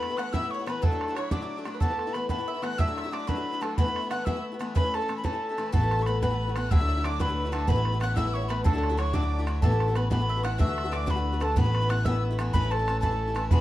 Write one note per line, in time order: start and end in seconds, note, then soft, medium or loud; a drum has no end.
0.00 0.16 B4 loud
0.00 0.19 B4 loud
0.00 0.19 B5 loud
0.00 bodhran medium
0.09 0.17 A3 soft
0.09 0.16 B3 soft
0.09 0.18 E4 medium
0.17 0.32 E3 medium
0.17 0.33 A3 medium
0.17 0.33 B3 medium
0.17 0.33 E4 medium
0.17 0.35 F#5 loud
0.17 0.33 F#5 medium
0.17 0.34 F#6 loud
0.17 bodhran medium
0.33 0.42 A2 medium
0.33 0.43 E3 medium
0.33 0.41 A3 medium
0.33 0.42 B3 medium
0.33 0.40 E4 medium
0.33 0.51 E5 medium
0.33 0.52 E6 loud
0.33 bodhran medium
0.41 0.59 A3 soft
0.41 0.60 B3 soft
0.41 0.58 E4 soft
0.51 0.68 C#5 medium
0.51 0.67 C#6 medium
0.59 0.67 A3 soft
0.59 0.66 B3 soft
0.59 0.67 E4 medium
0.66 0.82 E3 medium
0.66 0.81 A3 medium
0.66 0.82 B3 medium
0.66 0.82 E4 medium
0.66 0.84 B4 medium
0.66 0.82 B4 medium
0.66 0.85 B5 medium
0.66 bodhran medium
0.82 0.92 D2 medium
0.82 0.92 A2 medium
0.82 0.92 F#3 medium
0.82 0.92 A3 medium
0.82 0.91 D4 medium
0.82 0.90 E4 medium
0.82 1.17 A4 medium
0.82 1.14 A4 medium
0.82 1.18 A5 medium
0.82 bodhran medium
0.92 1.10 F#3 soft
0.92 1.08 A3 medium
0.92 1.08 D4 medium
0.92 1.07 E4 medium
1.01 bodhran medium
1.08 1.15 F#3 soft
1.08 1.16 A3 soft
1.08 1.17 D4 medium
1.08 1.16 E4 medium
1.15 1.31 F#3 soft
1.15 1.31 A3 medium
1.15 1.31 D4 medium
1.15 1.31 E4 medium
1.15 1.33 C#5 medium
1.15 1.31 C#5 medium
1.15 1.31 C#6 medium
1.15 bodhran medium
1.31 1.41 D2 medium
1.31 1.41 A2 medium
1.31 1.41 F#3 medium
1.31 1.41 A3 medium
1.31 1.41 D4 medium
1.31 1.40 E4 medium
1.31 1.74 D5 medium
1.31 1.82 D5 medium
1.31 1.58 D6 medium
1.31 bodhran medium
1.41 1.58 F#3 soft
1.41 1.57 A3 soft
1.41 1.57 D4 medium
1.41 1.56 E4 medium
1.57 1.64 F#3 soft
1.57 1.65 A3 soft
1.57 1.66 D4 soft
1.57 1.65 E4 soft
1.65 1.81 F#3 medium
1.65 1.81 A3 medium
1.65 1.82 D4 medium
1.65 1.81 E4 medium
1.65 bodhran medium
1.74 1.80 B4 soft
1.80 1.90 A2 medium
1.80 1.91 E3 medium
1.80 1.90 A3 medium
1.80 1.90 B3 medium
1.80 1.89 E4 medium
1.80 2.14 A4 medium
1.80 2.17 A4 medium
1.80 2.14 A5 loud
1.80 bodhran medium
1.90 2.06 A3 soft
1.90 2.07 B3 soft
1.90 2.06 E4 medium
1.99 bodhran soft
2.07 2.15 A3 soft
2.07 2.14 B3 soft
2.07 2.15 E4 medium
2.13 2.29 E3 soft
2.13 2.29 A3 soft
2.13 2.29 B3 medium
2.13 2.29 E4 medium
2.13 2.29 B4 medium
2.13 2.29 B5 loud
2.13 bodhran medium
2.29 2.39 A2 medium
2.29 2.39 E3 medium
2.29 2.38 A3 medium
2.29 2.39 B3 medium
2.29 2.37 E4 medium
2.29 2.47 B4 medium
2.29 2.49 B4 medium
2.29 2.64 B5 medium
2.29 bodhran medium
2.38 2.55 A3 soft
2.38 2.56 B3 soft
2.38 2.53 E4 medium
2.47 2.65 E5 medium
2.47 2.62 E5 medium
2.55 2.62 A3 soft
2.55 2.62 B3 soft
2.55 2.63 E4 soft
2.62 2.78 E3 medium
2.62 2.77 A3 medium
2.62 2.78 B3 medium
2.62 2.78 E4 medium
2.62 2.78 F#5 medium
2.62 2.81 F#5 medium
2.62 2.80 F#6 medium
2.62 bodhran medium
2.78 2.88 D2 medium
2.78 2.88 A2 medium
2.78 2.88 F#3 medium
2.78 2.88 A3 medium
2.78 2.87 D4 medium
2.78 2.86 E4 medium
2.78 3.14 E5 medium
2.78 2.96 E5 medium
2.78 3.14 E6 loud
2.78 bodhran medium
2.87 3.04 F#3 soft
2.87 3.04 A3 medium
2.87 3.03 D4 medium
2.87 3.02 E4 medium
2.98 3.12 E5 medium
2.98 bodhran medium
3.04 3.10 F#3 soft
3.04 3.11 A3 medium
3.04 3.12 D4 medium
3.04 3.12 E4 medium
3.11 3.26 F#3 soft
3.11 3.27 A3 medium
3.11 3.27 D4 medium
3.11 3.27 E4 medium
3.11 3.29 D5 medium
3.11 3.29 D6 loud
3.11 bodhran medium
3.27 3.37 D2 medium
3.27 3.37 A2 medium
3.27 3.36 F#3 medium
3.27 3.36 A3 medium
3.27 3.35 D4 medium
3.27 3.34 E4 medium
3.27 3.64 B4 medium
3.27 3.60 B4 medium
3.27 3.63 B5 medium
3.27 bodhran medium
3.35 3.53 F#3 medium
3.35 3.53 A3 soft
3.35 3.52 D4 soft
3.35 3.51 E4 medium
3.52 3.60 F#3 soft
3.52 3.60 A3 soft
3.52 3.61 D4 medium
3.52 3.61 E4 medium
3.61 3.77 F#3 medium
3.61 3.77 A3 medium
3.61 3.77 D4 medium
3.61 3.78 E4 medium
3.61 3.77 A4 medium
3.61 3.80 A4 medium
3.61 3.76 A5 medium
3.61 bodhran medium
3.77 3.87 A2 medium
3.77 3.87 E3 medium
3.77 3.86 A3 medium
3.77 3.87 B3 medium
3.77 3.85 E4 medium
3.77 3.97 B4 medium
3.77 4.09 B4 medium
3.77 4.08 B5 loud
3.77 bodhran medium
3.86 4.02 A3 medium
3.86 4.04 B3 medium
3.86 4.01 E4 medium
3.96 4.12 E5 medium
3.96 bodhran medium
4.02 4.10 A3 soft
4.02 4.10 B3 soft
4.02 4.10 E4 medium
4.10 4.25 E3 medium
4.10 4.26 A3 medium
4.10 4.26 B3 medium
4.10 4.27 E4 medium
4.10 4.29 F#5 medium
4.10 4.25 F#5 medium
4.10 4.26 F#6 medium
4.10 bodhran medium
4.25 4.35 A2 medium
4.25 4.35 E3 medium
4.25 4.35 A3 medium
4.25 4.36 B3 medium
4.25 4.34 E4 medium
4.25 4.43 E5 medium
4.25 4.45 E5 medium
4.25 4.43 E6 medium
4.25 bodhran medium
4.35 4.52 A3 medium
4.35 4.53 B3 soft
4.35 4.51 E4 medium
4.52 4.60 A3 soft
4.52 4.59 B3 soft
4.52 4.60 E4 soft
4.59 4.74 E3 medium
4.59 4.74 A3 medium
4.59 4.75 B3 medium
4.59 4.75 E4 medium
4.59 bodhran medium
4.75 4.84 A2 medium
4.75 4.84 E3 medium
4.75 4.84 A3 medium
4.75 4.84 C#4 medium
4.75 4.82 E4 medium
4.75 4.84 B4 loud
4.75 4.94 B4 medium
4.75 4.96 B5 loud
4.75 bodhran medium
4.84 5.02 A3 soft
4.84 5.01 C#4 medium
4.84 5.00 E4 medium
4.94 5.16 A4 medium
4.94 5.17 A4 medium
4.94 5.16 A5 loud
4.94 bodhran soft
5.01 5.08 A3 soft
5.01 5.09 C#4 soft
5.01 5.09 E4 medium
5.08 5.22 E3 medium
5.08 5.23 A3 medium
5.08 5.23 C#4 medium
5.08 5.24 E4 medium
5.08 bodhran medium
5.17 5.26 B5 medium
5.24 5.33 A2 medium
5.24 5.33 E3 medium
5.24 5.33 A3 medium
5.24 5.33 C#4 medium
5.24 5.31 E4 medium
5.24 5.64 A4 medium
5.24 5.70 A4 medium
5.24 5.72 A5 medium
5.24 bodhran medium
5.33 5.50 A3 soft
5.33 5.49 C#4 soft
5.33 5.48 E4 medium
5.49 5.57 A3 soft
5.49 5.57 C#4 soft
5.49 5.57 E4 soft
5.58 5.71 E3 medium
5.58 5.72 A3 medium
5.58 5.73 C#4 medium
5.58 5.72 E4 medium
5.58 bodhran medium
5.67 5.75 B4 medium
5.72 6.69 A1 medium
5.72 5.82 A2 medium
5.72 5.82 E3 medium
5.72 5.81 A3 medium
5.72 5.82 B3 medium
5.72 5.80 E4 loud
5.72 5.90 A4 medium
5.72 6.24 A4 medium
5.72 6.04 A5 loud
5.72 bodhran medium
5.81 5.98 A3 medium
5.81 5.99 B3 soft
5.81 5.97 E4 medium
5.91 6.06 A4 medium
5.91 bodhran medium
5.99 6.07 A3 soft
5.99 6.06 B3 soft
5.99 6.06 E4 medium
5.99 6.07 C#6 medium
6.06 6.22 E3 medium
6.06 6.22 A3 medium
6.06 6.22 B3 soft
6.06 6.22 E4 medium
6.06 6.21 B4 medium
6.06 6.21 B5 loud
6.06 bodhran medium
6.22 6.31 A2 medium
6.22 6.31 E3 medium
6.22 6.31 A3 medium
6.22 6.31 B3 medium
6.22 6.30 E4 medium
6.22 6.68 B4 medium
6.22 6.56 B4 loud
6.22 6.57 B5 medium
6.22 bodhran medium
6.31 6.48 A3 soft
6.31 6.48 B3 soft
6.31 6.46 E4 medium
6.48 6.56 A3 soft
6.48 6.55 B3 soft
6.48 6.55 E4 medium
6.56 6.71 E3 medium
6.56 6.71 A3 medium
6.56 6.71 B3 medium
6.56 6.71 E4 medium
6.56 6.73 F#5 loud
6.56 6.72 F#6 loud
6.56 bodhran medium
6.71 6.80 D2 medium
6.71 7.67 D2 medium
6.71 6.80 A2 medium
6.71 6.80 F#3 medium
6.71 6.80 A3 medium
6.71 6.79 D4 medium
6.71 6.79 E4 medium
6.71 7.05 E5 loud
6.71 6.87 E5 medium
6.71 7.01 E6 loud
6.71 bodhran medium
6.80 6.97 F#3 soft
6.80 6.97 A3 medium
6.80 6.96 D4 medium
6.80 6.95 E4 medium
6.89 7.03 E5 medium
6.96 7.04 F#3 soft
6.96 7.04 A3 soft
6.96 7.05 D4 medium
6.96 7.04 E4 medium
7.01 7.21 D5 loud
7.01 7.07 E6 medium
7.01 bodhran medium
7.05 7.19 F#3 medium
7.05 7.19 A3 soft
7.05 7.20 D4 medium
7.05 7.20 E4 medium
7.05 7.19 D5 medium
7.05 7.23 D6 loud
7.20 7.28 D2 medium
7.20 7.29 A2 medium
7.20 7.29 F#3 medium
7.20 7.28 A3 medium
7.20 7.28 D4 medium
7.20 7.27 E4 medium
7.20 7.67 B4 medium
7.20 7.51 B4 medium
7.20 7.54 B5 loud
7.20 bodhran medium
7.28 7.46 F#3 soft
7.28 7.45 A3 soft
7.28 7.44 D4 soft
7.28 7.43 E4 medium
7.45 7.51 F#3 soft
7.45 7.51 A3 soft
7.45 7.52 D4 soft
7.45 7.53 E4 soft
7.52 7.68 F#3 medium
7.52 7.67 A3 medium
7.52 7.68 D4 medium
7.52 7.67 E4 medium
7.52 7.67 A4 medium
7.52 7.70 A5 loud
7.52 bodhran medium
7.67 8.64 A1 medium
7.67 7.77 A2 medium
7.67 7.77 E3 medium
7.67 7.76 A3 medium
7.67 7.77 B3 medium
7.67 7.74 E4 medium
7.67 7.79 B4 medium
7.67 8.00 B4 loud
7.67 8.01 B5 loud
7.67 bodhran medium
7.76 7.93 A3 medium
7.76 7.93 B3 soft
7.76 7.91 E4 medium
7.80 7.89 B4 medium
7.85 bodhran medium
7.89 8.01 E4 medium
7.89 8.03 B4 medium
7.94 8.00 A3 medium
7.94 7.99 B3 soft
8.00 8.15 E3 medium
8.00 8.16 A3 medium
8.00 8.16 B3 medium
8.00 8.16 E4 medium
8.00 8.18 F#5 medium
8.00 8.17 F#5 loud
8.00 8.15 F#6 loud
8.00 bodhran medium
8.16 8.25 A2 medium
8.16 8.26 E3 medium
8.16 8.25 A3 loud
8.16 8.26 B3 medium
8.16 8.24 E4 medium
8.16 8.51 E5 loud
8.16 8.34 E5 medium
8.16 8.35 E6 loud
8.16 bodhran medium
8.25 8.41 A3 soft
8.25 8.42 B3 soft
8.25 8.40 E4 medium
8.34 8.50 C#5 medium
8.34 8.50 C#6 medium
8.41 8.49 A3 soft
8.41 8.48 B3 soft
8.41 8.49 E4 soft
8.48 8.64 E3 medium
8.48 8.64 A3 medium
8.48 8.64 B3 medium
8.48 8.65 E4 medium
8.48 8.64 B4 medium
8.48 8.65 B4 medium
8.48 8.63 B5 medium
8.48 bodhran medium
8.64 8.74 D2 medium
8.64 9.61 D2 medium
8.64 8.74 A2 medium
8.64 8.74 F#3 medium
8.64 8.74 A3 medium
8.64 8.73 D4 medium
8.64 8.72 E4 medium
8.64 9.00 A4 medium
8.64 8.77 A4 medium
8.64 8.99 A5 loud
8.64 bodhran medium
8.73 8.90 F#3 medium
8.73 8.90 A3 medium
8.73 8.89 D4 medium
8.73 8.89 E4 medium
8.78 8.88 A4 medium
8.83 bodhran medium
8.89 8.96 F#3 medium
8.89 8.97 A3 medium
8.89 8.97 D4 medium
8.89 8.98 E4 medium
8.89 8.98 A4 medium
8.97 9.13 F#3 medium
8.97 9.13 A3 medium
8.97 9.13 D4 medium
8.97 9.13 E4 medium
8.97 9.13 C#5 medium
8.97 9.15 C#5 medium
8.97 9.15 C#6 loud
8.97 bodhran medium
9.13 9.23 D2 medium
9.13 9.23 A2 medium
9.13 9.22 F#3 medium
9.13 9.22 A3 medium
9.13 9.21 D4 medium
9.13 9.20 E4 medium
9.13 9.61 D5 medium
9.13 9.60 D5 medium
9.13 9.40 D6 medium
9.13 bodhran medium
9.21 9.40 F#3 medium
9.21 9.39 A3 soft
9.21 9.38 D4 soft
9.21 9.38 E4 soft
9.39 9.45 F#3 soft
9.39 9.46 A3 soft
9.39 9.46 D4 soft
9.39 9.47 E4 medium
9.47 9.62 F#3 soft
9.47 9.63 A3 medium
9.47 9.63 D4 medium
9.47 9.62 E4 medium
9.47 bodhran medium
9.62 10.58 A1 medium
9.62 9.71 A2 medium
9.62 9.72 E3 medium
9.62 9.72 A3 medium
9.62 9.72 B3 medium
9.62 9.71 E4 loud
9.62 9.97 A4 medium
9.62 9.79 A4 medium
9.62 9.97 A5 medium
9.62 bodhran medium
9.72 9.88 A3 medium
9.72 9.89 B3 medium
9.72 9.87 E4 medium
9.80 9.96 A4 medium
9.80 bodhran medium
9.88 9.96 A3 medium
9.88 9.95 B3 soft
9.88 9.96 E4 medium
9.95 10.10 E3 medium
9.95 10.10 A3 medium
9.95 10.10 B3 medium
9.95 10.11 E4 medium
9.95 10.11 B4 medium
9.95 10.10 B4 medium
9.95 10.10 B5 medium
9.95 bodhran medium
10.10 10.20 A2 medium
10.10 10.20 E3 medium
10.10 10.19 A3 medium
10.10 10.20 B3 medium
10.10 10.18 E4 medium
10.10 10.46 B4 medium
10.10 10.30 B4 medium
10.10 10.45 B5 medium
10.10 bodhran medium
10.19 10.36 A3 soft
10.19 10.37 B3 soft
10.19 10.35 E4 medium
10.29 10.44 E5 medium
10.36 10.44 A3 soft
10.36 10.43 B3 soft
10.36 10.44 E4 soft
10.43 10.58 E3 medium
10.43 10.58 A3 medium
10.43 10.59 B3 medium
10.43 10.59 E4 medium
10.43 10.60 F#5 loud
10.43 10.60 F#5 medium
10.43 10.60 F#6 medium
10.43 bodhran medium
10.58 10.68 D2 medium
10.58 11.55 D2 medium
10.58 10.68 A2 medium
10.58 10.68 E3 medium
10.58 10.68 A3 medium
10.58 10.67 D4 medium
10.58 10.66 F#4 medium
10.58 10.93 E5 loud
10.58 10.94 E5 medium
10.58 10.94 E6 loud
10.58 bodhran medium
10.67 10.85 E3 soft
10.67 10.84 A3 medium
10.67 10.84 D4 medium
10.67 10.83 F#4 medium
10.78 bodhran medium
10.84 10.90 E3 soft
10.84 10.91 A3 soft
10.84 10.92 D4 soft
10.84 10.92 F#4 medium
10.91 11.06 E3 medium
10.91 11.06 A3 soft
10.91 11.07 D4 soft
10.91 11.07 F#4 medium
10.91 11.08 D5 medium
10.91 11.09 D5 medium
10.91 11.12 D6 loud
10.91 bodhran medium
11.06 11.16 D2 medium
11.06 11.17 A2 medium
11.06 11.17 E3 medium
11.06 11.16 A3 medium
11.06 11.16 D4 medium
11.06 11.14 F#4 medium
11.06 11.42 B4 medium
11.06 11.40 B4 medium
11.06 bodhran medium
11.10 11.46 B5 medium
11.15 11.33 E3 soft
11.15 11.32 A3 soft
11.15 11.32 D4 medium
11.15 11.31 F#4 medium
11.33 11.39 E3 soft
11.33 11.39 A3 soft
11.33 11.40 D4 soft
11.33 11.41 F#4 soft
11.40 11.55 E3 medium
11.40 11.56 A3 medium
11.40 11.57 D4 medium
11.40 11.57 F#4 medium
11.40 11.58 A4 medium
11.40 11.56 A4 medium
11.40 bodhran medium
11.44 11.58 A5 medium
11.56 12.52 A1 loud
11.56 11.65 A2 medium
11.56 11.65 E3 medium
11.56 11.64 A3 medium
11.56 11.65 B3 loud
11.56 11.63 E4 loud
11.56 11.91 B4 loud
11.56 11.92 B4 medium
11.56 11.91 B5 loud
11.56 bodhran medium
11.64 11.81 A3 medium
11.64 11.82 B3 medium
11.64 11.80 E4 medium
11.75 bodhran medium
11.81 11.89 A3 medium
11.81 11.89 B3 soft
11.81 11.89 E4 medium
11.89 12.05 E3 medium
11.89 12.05 A3 medium
11.89 12.05 B3 medium
11.89 12.05 E4 medium
11.89 12.07 F#5 medium
11.89 12.04 F#5 medium
11.89 12.07 F#6 loud
11.89 bodhran medium
12.05 12.14 A2 medium
12.05 12.14 E3 medium
12.05 12.14 A3 medium
12.05 12.14 B3 loud
12.05 12.12 E4 medium
12.05 12.21 E5 medium
12.05 12.23 E5 medium
12.05 12.23 E6 medium
12.05 bodhran medium
12.14 12.31 A3 soft
12.14 12.31 B3 soft
12.14 12.29 E4 medium
12.31 12.39 A3 medium
12.31 12.38 B3 soft
12.31 12.38 E4 medium
12.39 12.53 E3 medium
12.39 12.53 A3 medium
12.39 12.54 B3 medium
12.39 12.54 E4 medium
12.39 bodhran medium
12.53 13.49 A1 medium
12.53 12.63 A2 medium
12.53 12.63 E3 medium
12.53 12.63 A3 medium
12.53 12.63 C#4 medium
12.53 12.62 E4 medium
12.53 12.73 B4 loud
12.53 12.70 B4 loud
12.53 12.72 B5 loud
12.53 bodhran medium
12.63 12.80 A3 soft
12.63 12.79 C#4 medium
12.63 12.78 E4 medium
12.71 13.01 A4 medium
12.71 13.00 A5 loud
12.71 bodhran medium
12.79 12.88 A3 soft
12.79 12.87 C#4 soft
12.79 12.87 E4 medium
12.88 13.02 E3 medium
12.88 13.02 A3 medium
12.88 13.02 C#4 medium
12.88 13.02 E4 medium
12.88 bodhran medium
13.00 13.11 A2 medium
13.00 13.11 E3 medium
13.00 13.11 A3 medium
13.00 13.11 C#4 medium
13.00 13.10 E4 medium
13.00 13.47 A4 medium
13.00 13.46 A5 medium
13.00 bodhran medium
13.11 13.29 A3 soft
13.11 13.28 C#4 soft
13.11 13.26 E4 medium
13.28 13.34 A3 soft
13.28 13.35 C#4 soft
13.28 13.35 E4 soft
13.35 13.50 E3 medium
13.35 13.51 A3 medium
13.35 13.51 C#4 medium
13.35 13.51 E4 medium
13.35 bodhran medium
13.50 13.61 E1 medium
13.50 13.60 E3 medium
13.50 13.60 G#3 loud
13.50 13.59 B3 medium
13.50 13.58 F#4 loud
13.50 13.61 B4 medium
13.50 13.61 B5 medium
13.50 bodhran loud